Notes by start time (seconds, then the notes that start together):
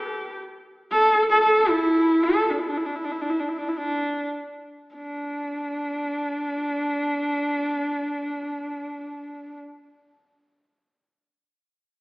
Already playing: G4
0.92 A4
1.31 A4
1.44 A4
1.69 E4
2.23 A4
2.50 D4
2.59 E4
2.69 D4
2.77 E4
2.86 D4
2.95 E4
3.04 D4
3.12 E4
3.21 D4
3.30 E4
3.40 D4
3.48 E4
3.58 D4
3.68 E4
3.78 D4
4.95 D4